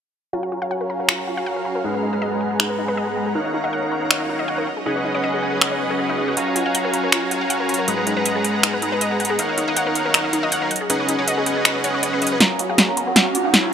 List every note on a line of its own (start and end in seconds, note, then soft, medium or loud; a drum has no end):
0.33 0.40 F4 medium
0.33 0.60 F#4 medium
0.33 0.60 C#5 medium
0.33 0.60 F5 medium
0.33 0.60 G#5 medium
0.33 0.60 A#5 medium
0.43 0.47 F5 medium
0.52 0.59 F4 medium
0.62 1.82 F#4 medium
0.62 1.82 C#5 medium
0.62 0.70 F5 medium
0.62 1.82 F5 medium
0.62 1.82 G#5 medium
0.62 1.82 A#5 medium
0.71 0.80 F#5 medium
0.81 0.87 A#4 medium
0.90 0.97 A#5 medium
1.00 1.08 A#4 medium
1.09 1.16 F4 medium
1.09 finger snap medium
1.18 1.22 F5 medium
1.27 1.34 F4 medium
1.37 1.46 F5 loud
1.46 1.56 F#5 loud
1.56 1.63 A#4 medium
1.65 1.72 A#5 medium
1.75 1.84 A#4 medium
1.84 2.11 G#3 medium
1.84 1.91 D#4 medium
1.84 2.11 G#4 medium
1.84 2.11 B4 medium
1.84 2.11 F#5 medium
1.84 2.11 A#5 medium
1.84 4.64 A#5 medium
1.94 1.98 B4 medium
2.03 2.10 D#4 medium
2.13 3.33 G#3 medium
2.13 3.33 G#4 medium
2.13 2.21 B4 medium
2.13 3.33 B4 medium
2.13 3.33 F#5 medium
2.13 3.33 A#5 medium
2.22 2.31 D#5 medium
2.32 2.38 G#4 medium
2.41 2.48 F#5 medium
2.51 2.59 G#4 medium
2.60 2.67 D#4 medium
2.60 finger snap medium
2.69 2.73 B4 medium
2.78 2.85 D#4 medium
2.88 2.97 B4 loud
2.97 3.07 D#5 loud
3.07 3.13 G#4 medium
3.16 3.23 F#5 medium
3.26 3.35 G#4 medium
3.35 6.34 F#3 medium
3.35 7.84 C#4 medium
3.35 3.42 D#4 medium
3.35 3.62 D#4 medium
3.35 3.62 A#4 medium
3.35 3.62 C#5 medium
3.35 6.34 D#5 medium
3.35 3.62 F5 medium
3.35 3.62 F#5 medium
3.45 3.49 D#5 medium
3.54 3.61 D#4 medium
3.64 4.66 D#4 medium
3.64 4.66 A#4 medium
3.64 4.66 C#5 medium
3.64 3.72 D#5 loud
3.64 4.66 F5 medium
3.64 4.66 F#5 medium
3.73 3.82 F#5 loud
3.83 3.89 A#4 medium
3.92 3.99 A#5 medium
4.01 4.10 A#4 medium
4.10 4.17 D#4 medium
4.10 finger snap medium
4.20 4.24 D#5 medium
4.29 4.36 D#4 medium
4.39 4.48 D#5 medium
4.48 4.58 F#5 loud
4.58 4.64 A#4 medium
4.67 6.35 B4 medium
4.67 4.74 F#5 medium
4.77 4.85 G#4 medium
4.86 5.12 C#4 medium
4.86 4.93 D#4 medium
4.86 5.12 G#4 medium
4.86 5.12 B4 medium
4.86 5.12 D#5 medium
4.86 5.12 F#5 medium
4.96 5.00 C#5 medium
5.05 5.12 D#4 medium
5.15 6.35 C#4 medium
5.15 6.35 G#4 medium
5.15 6.35 B4 medium
5.15 5.23 C#5 loud
5.15 6.35 D#5 medium
5.15 6.35 F#5 medium
5.24 5.33 D#5 loud
5.34 5.40 G#4 medium
5.43 5.50 F#5 medium
5.52 5.61 G#4 medium
5.61 5.68 D#4 medium
5.61 finger snap medium
5.71 5.75 C#5 medium
5.80 5.87 B4 medium
5.90 5.96 G#4 loud
5.99 6.06 G#4 medium
6.09 6.15 D#4 loud
6.18 6.25 D#4 medium
6.28 6.32 F#4 medium
6.37 6.44 F4 medium
6.37 6.63 F#4 medium
6.37 6.63 C#5 medium
6.37 6.63 F5 medium
6.37 6.63 G#5 medium
6.37 10.67 A#5 medium
6.37 6.63 A#5 medium
6.37 closed hi-hat medium
6.47 6.51 F5 medium
6.56 6.63 F4 medium
6.56 closed hi-hat medium
6.66 7.86 F#4 medium
6.66 7.86 C#5 medium
6.66 6.74 F5 medium
6.66 7.86 F5 medium
6.66 7.86 G#5 medium
6.66 7.86 A#5 medium
6.75 6.84 F#5 loud
6.75 closed hi-hat medium
6.85 6.91 A#4 medium
6.93 7.00 A#5 medium
6.93 closed hi-hat medium
7.04 7.12 A#4 medium
7.12 7.19 F4 medium
7.12 finger snap medium
7.12 closed hi-hat medium
7.22 7.26 F5 medium
7.31 7.38 F4 medium
7.31 closed hi-hat medium
7.41 7.50 F5 loud
7.50 7.59 F#5 loud
7.50 closed hi-hat medium
7.60 7.66 A#4 medium
7.69 7.76 A#5 medium
7.69 closed hi-hat soft
7.74 closed hi-hat medium
7.79 7.87 A#4 medium
7.88 8.14 G#3 medium
7.88 7.95 D#4 medium
7.88 8.14 G#4 medium
7.88 8.14 B4 medium
7.88 8.14 F#5 medium
7.88 8.14 A#5 medium
7.88 closed hi-hat medium
7.98 8.02 B4 medium
8.07 8.14 D#4 medium
8.07 closed hi-hat medium
8.17 9.37 G#3 medium
8.17 9.37 G#4 medium
8.17 8.25 B4 medium
8.17 9.37 B4 medium
8.17 9.37 F#5 medium
8.17 9.37 A#5 medium
8.25 8.35 D#5 loud
8.25 closed hi-hat medium
8.35 8.42 G#4 medium
8.44 8.51 F#5 medium
8.44 closed hi-hat medium
8.54 8.63 G#4 medium
8.63 8.70 D#4 medium
8.63 finger snap medium
8.63 closed hi-hat medium
8.73 8.77 B4 medium
8.82 8.89 D#4 medium
8.82 closed hi-hat medium
8.92 9.01 B4 loud
9.01 9.11 D#5 loud
9.01 closed hi-hat medium
9.11 9.17 G#4 medium
9.20 9.27 F#5 medium
9.20 closed hi-hat soft
9.25 closed hi-hat medium
9.30 9.38 G#4 medium
9.39 12.38 F#3 medium
9.39 12.38 C#4 medium
9.39 9.46 D#4 medium
9.39 9.65 D#4 medium
9.39 9.65 A#4 medium
9.39 9.65 C#5 medium
9.39 12.38 D#5 medium
9.39 9.65 F5 medium
9.39 9.65 F#5 medium
9.39 closed hi-hat medium
9.49 9.53 D#5 medium
9.58 9.65 D#4 medium
9.58 closed hi-hat medium
9.68 10.70 D#4 medium
9.68 10.70 A#4 medium
9.68 10.70 C#5 medium
9.68 9.76 D#5 loud
9.68 10.70 F5 medium
9.68 10.70 F#5 medium
9.77 9.86 F#5 loud
9.77 closed hi-hat medium
9.87 9.93 A#4 medium
9.95 10.02 A#5 medium
9.95 closed hi-hat medium
10.06 10.14 A#4 medium
10.14 10.21 D#4 medium
10.14 finger snap medium
10.14 closed hi-hat medium
10.24 10.28 D#5 medium
10.33 10.40 D#4 medium
10.33 closed hi-hat medium
10.43 10.52 D#5 medium
10.52 10.61 F#5 loud
10.52 closed hi-hat medium
10.62 10.68 A#4 medium
10.71 12.39 B4 medium
10.71 10.78 F#5 medium
10.71 closed hi-hat soft
10.76 closed hi-hat medium
10.81 10.89 G#4 medium
10.90 11.16 C#4 medium
10.90 10.97 D#4 medium
10.90 11.16 G#4 medium
10.90 11.16 B4 medium
10.90 11.16 D#5 medium
10.90 11.16 F#5 medium
10.90 closed hi-hat medium
11.00 11.03 C#5 medium
11.09 11.16 D#4 medium
11.09 closed hi-hat medium
11.18 12.39 C#4 medium
11.18 12.38 G#4 medium
11.18 12.38 B4 medium
11.18 11.27 C#5 medium
11.18 12.39 D#5 medium
11.18 12.38 F#5 medium
11.28 11.37 D#5 loud
11.28 closed hi-hat medium
11.38 11.44 G#4 medium
11.46 11.53 F#5 medium
11.46 closed hi-hat medium
11.56 11.65 G#4 medium
11.65 11.72 D#4 medium
11.65 finger snap medium
11.65 closed hi-hat medium
11.75 11.79 C#5 medium
11.84 11.88 C#5 loud
11.84 closed hi-hat medium
11.94 11.98 C#5 medium
12.03 12.10 C#5 medium
12.03 closed hi-hat medium
12.13 12.19 B4 medium
12.22 12.31 D#5 medium
12.22 closed hi-hat soft
12.27 closed hi-hat medium
12.32 12.36 B4 medium
12.40 12.48 F4 medium
12.40 12.67 F#4 medium
12.40 12.58 A#4 loud
12.40 12.67 C#5 medium
12.40 12.67 F5 medium
12.40 12.67 G#5 medium
12.40 12.67 A#5 medium
12.40 13.73 A#5 medium
12.40 snare soft
12.40 closed hi-hat medium
12.40 riser medium
12.51 12.54 F5 medium
12.59 12.67 F4 medium
12.59 closed hi-hat medium
12.69 13.73 F#4 medium
12.69 12.81 G#4 medium
12.69 13.73 C#5 medium
12.69 13.73 F5 medium
12.69 12.78 F5 medium
12.69 13.73 G#5 medium
12.69 13.73 A#5 medium
12.78 12.88 F#5 loud
12.78 snare soft
12.78 closed hi-hat medium
12.88 13.00 A#4 medium
12.88 12.95 A#4 medium
12.97 13.04 A#5 medium
12.97 closed hi-hat medium
13.07 13.25 F#4 medium
13.07 13.16 A#4 medium
13.16 13.23 F4 medium
13.16 snare soft
13.16 closed hi-hat medium
13.26 13.30 F5 medium
13.35 13.42 F4 medium
13.35 13.53 F#4 medium
13.35 closed hi-hat medium
13.45 13.53 F5 loud
13.54 13.63 F#5 loud
13.54 snare soft
13.54 closed hi-hat medium
13.64 13.70 A#4 medium